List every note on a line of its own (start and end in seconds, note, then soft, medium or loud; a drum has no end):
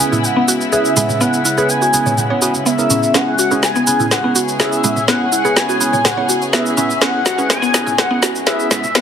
0.00 9.01 C#3 medium
0.00 9.01 G#3 medium
0.00 3.10 B3 medium
0.00 0.18 B3 medium
0.00 0.18 C#4 medium
0.00 3.13 E4 medium
0.00 0.18 E4 medium
0.00 0.18 G#4 medium
0.00 0.18 B4 medium
0.00 0.25 G#5 loud
0.00 cabasa medium
0.12 0.19 E4 medium
0.12 mid tom medium
0.12 cabasa soft
0.24 0.48 F#5 loud
0.24 cabasa medium
0.36 0.47 B3 medium
0.36 0.70 B3 medium
0.36 0.70 C#4 medium
0.36 0.70 E4 medium
0.36 0.70 G#4 medium
0.36 0.70 B4 medium
0.48 0.60 F#4 loud
0.48 cabasa medium
0.61 cabasa soft
0.72 0.94 B3 medium
0.72 0.94 C#4 medium
0.72 0.94 E4 medium
0.72 0.84 G#4 medium
0.72 0.94 G#4 medium
0.72 0.94 B4 loud
0.72 1.22 E5 medium
0.72 cabasa medium
0.85 cabasa soft
0.97 1.08 G#3 medium
0.97 1.08 B3 medium
0.97 1.08 C#4 medium
0.97 1.08 E4 medium
0.97 1.08 G#4 medium
0.97 1.08 B4 medium
0.97 mid tom medium
0.97 cabasa medium
1.09 mid tom medium
1.09 cabasa soft
1.20 1.28 B3 loud
1.20 1.39 B3 medium
1.20 1.39 C#4 medium
1.20 1.39 E4 medium
1.20 1.39 G#4 medium
1.20 1.39 B4 medium
1.20 1.44 F#5 loud
1.20 cabasa medium
1.34 cabasa soft
1.44 1.56 E4 medium
1.44 1.67 F#5 loud
1.44 cabasa medium
1.58 1.91 B3 loud
1.58 1.91 C#4 medium
1.58 1.91 E4 medium
1.58 1.68 G#4 loud
1.58 1.91 G#4 medium
1.58 1.91 B4 loud
1.58 cabasa soft
1.69 2.19 G#5 loud
1.69 cabasa medium
1.82 1.88 F#4 medium
1.82 cabasa soft
1.94 2.12 B3 medium
1.94 2.12 C#4 medium
1.94 2.12 E4 medium
1.94 2.12 G#4 medium
1.94 2.12 B4 medium
1.94 cabasa loud
2.06 2.17 C#5 medium
2.06 mid tom medium
2.06 cabasa soft
2.18 2.42 F#5 medium
2.18 mid tom medium
2.18 cabasa medium
2.30 2.40 B3 medium
2.30 2.40 C#4 medium
2.30 2.40 E4 medium
2.30 2.40 G#4 medium
2.30 2.40 B4 medium
2.30 2.41 C#5 medium
2.42 2.54 B3 medium
2.42 2.54 C#4 medium
2.42 2.54 E4 medium
2.42 2.53 F#4 medium
2.42 2.54 G#4 medium
2.42 2.54 B4 medium
2.42 cabasa medium
2.55 cabasa soft
2.66 2.77 B3 loud
2.66 3.16 E5 medium
2.66 cabasa medium
2.79 3.12 B3 medium
2.79 3.12 C#4 medium
2.79 3.12 E4 medium
2.79 3.12 G#4 medium
2.79 3.12 A#4 medium
2.79 cabasa soft
2.90 2.97 C#4 medium
2.90 mid tom medium
2.90 cabasa loud
3.03 cabasa soft
3.14 3.33 B3 medium
3.14 3.33 C#4 medium
3.14 3.26 C#4 medium
3.14 9.01 C#4 medium
3.14 3.33 E4 medium
3.14 9.01 G#4 medium
3.14 3.33 G#4 medium
3.14 3.33 B4 medium
3.14 3.38 F#5 loud
3.14 snare soft
3.14 cabasa medium
3.39 3.51 F#4 loud
3.39 3.50 F#5 loud
3.39 cabasa medium
3.51 3.84 B3 loud
3.51 3.62 C#4 medium
3.51 3.84 C#4 medium
3.51 3.84 E4 medium
3.51 3.84 G#4 medium
3.51 3.84 B4 loud
3.51 cabasa soft
3.63 4.13 G#5 loud
3.63 snare medium
3.63 cabasa medium
3.76 3.82 B3 loud
3.76 cabasa soft
3.87 4.05 B3 medium
3.87 4.05 C#4 medium
3.87 4.05 E4 medium
3.87 4.05 G#4 medium
3.87 4.05 B4 medium
3.87 cabasa medium
4.00 4.06 E4 medium
4.00 mid tom medium
4.00 cabasa soft
4.11 4.35 F#5 loud
4.11 snare medium
4.11 cabasa medium
4.24 4.57 B3 medium
4.24 4.34 B3 medium
4.24 4.57 C#4 medium
4.24 4.57 E4 medium
4.24 4.57 G#4 medium
4.24 4.57 B4 medium
4.35 4.47 F#4 loud
4.35 cabasa medium
4.48 cabasa soft
4.60 4.81 B3 medium
4.60 4.81 C#4 medium
4.60 4.81 E4 medium
4.60 4.81 G#4 medium
4.60 4.71 G#4 medium
4.60 4.81 B4 loud
4.60 5.10 E5 medium
4.60 snare medium
4.60 cabasa medium
4.72 cabasa soft
4.84 4.95 G#3 medium
4.84 4.95 B3 medium
4.84 4.95 C#4 medium
4.84 4.95 E4 medium
4.84 4.95 G#4 medium
4.84 4.95 B4 medium
4.84 mid tom medium
4.84 cabasa medium
4.96 mid tom medium
4.96 cabasa soft
5.08 5.26 B3 medium
5.08 5.15 B3 loud
5.08 5.26 C#4 medium
5.08 5.26 E4 medium
5.08 5.26 G#4 medium
5.08 5.26 B4 medium
5.08 5.31 F#5 loud
5.08 snare medium
5.08 cabasa medium
5.32 5.44 E4 medium
5.32 5.58 F#5 loud
5.32 cabasa medium
5.45 5.78 B3 loud
5.45 5.78 C#4 medium
5.45 5.78 E4 medium
5.45 5.78 G#4 medium
5.45 5.55 G#4 loud
5.45 5.78 B4 loud
5.45 cabasa soft
5.56 6.06 G#5 loud
5.56 snare medium
5.56 cabasa medium
5.69 5.75 F#4 medium
5.69 cabasa soft
5.81 5.99 B3 medium
5.81 5.99 C#4 medium
5.81 5.99 E4 medium
5.81 5.99 G#4 medium
5.81 5.99 B4 medium
5.81 cabasa medium
5.93 6.04 C#5 medium
5.93 mid tom medium
5.93 cabasa soft
6.05 6.29 F#5 loud
6.05 snare medium
6.05 mid tom medium
6.05 cabasa medium
6.17 6.50 B3 medium
6.17 6.50 C#4 medium
6.17 6.50 E4 medium
6.17 6.50 G#4 medium
6.17 6.50 B4 medium
6.17 6.28 C#5 medium
6.29 6.40 F#4 medium
6.29 cabasa medium
6.42 cabasa soft
6.53 6.64 B3 loud
6.53 6.75 B3 medium
6.53 6.75 C#4 medium
6.53 6.75 E4 medium
6.53 6.74 G#4 medium
6.53 6.75 B4 loud
6.53 7.03 E5 medium
6.53 snare medium
6.53 cabasa medium
6.66 cabasa soft
6.77 6.89 B3 medium
6.77 6.84 C#4 medium
6.77 6.89 C#4 medium
6.77 6.89 E4 medium
6.77 6.89 G#4 medium
6.77 6.89 B4 medium
6.77 mid tom medium
6.77 cabasa medium
6.90 cabasa soft
7.01 7.20 B3 medium
7.01 7.13 C#4 medium
7.01 7.20 C#4 medium
7.01 7.20 E4 medium
7.01 7.20 G#4 medium
7.01 7.20 B4 medium
7.01 7.25 F#5 loud
7.01 snare medium
7.01 cabasa soft
7.25 7.38 F#4 loud
7.25 7.48 F#5 loud
7.25 snare medium
7.25 cabasa medium
7.38 7.71 B3 loud
7.38 7.49 C#4 medium
7.38 7.71 C#4 medium
7.38 7.71 E4 medium
7.38 7.71 G#4 medium
7.38 7.71 B4 loud
7.38 cabasa soft
7.49 7.95 G#5 loud
7.49 snare medium
7.49 cabasa medium
7.62 7.69 B3 loud
7.62 cabasa soft
7.74 7.92 B3 medium
7.74 7.92 C#4 medium
7.74 7.92 E4 medium
7.74 7.92 G#4 medium
7.74 7.92 B4 medium
7.74 snare medium
7.74 cabasa medium
7.86 7.93 E4 medium
7.86 mid tom medium
7.86 cabasa soft
7.98 8.21 F#5 medium
7.98 snare medium
7.98 cabasa medium
8.11 8.21 B3 medium
8.11 8.44 B3 medium
8.11 8.44 C#4 medium
8.11 8.44 E4 medium
8.11 8.44 G#4 medium
8.11 8.44 B4 medium
8.22 8.34 F#4 loud
8.22 snare medium
8.22 cabasa medium
8.35 cabasa soft
8.46 8.68 B3 medium
8.46 8.68 C#4 medium
8.46 8.68 E4 medium
8.46 8.58 G#4 medium
8.46 8.68 G#4 medium
8.46 8.68 B4 loud
8.46 8.97 E5 medium
8.46 snare medium
8.46 cabasa soft
8.60 cabasa soft
8.71 8.82 G#3 medium
8.71 8.83 B3 medium
8.71 8.83 C#4 medium
8.71 8.83 E4 medium
8.71 8.83 G#4 medium
8.71 8.83 B4 loud
8.71 snare medium
8.71 mid tom medium
8.71 cabasa medium
8.84 mid tom medium
8.84 cabasa soft
8.95 9.01 B3 loud
8.95 9.01 B3 medium
8.95 9.01 C#4 medium
8.95 9.01 E4 medium
8.95 9.01 G#4 medium
8.95 9.01 B4 medium
8.95 9.01 F#5 loud
8.95 snare medium
8.95 cabasa medium